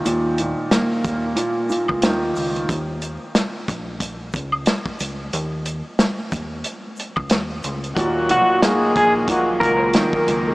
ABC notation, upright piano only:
X:1
M:4/4
L:1/8
Q:"Swing 16ths" 1/4=91
K:Ebm
V:1 name="Upright piano" clef=bass
[B,,E,] B,, B,2 B,, B,, E,2 | z8 | z8 | B,, B,, B,2 B,, B,, E,2 |]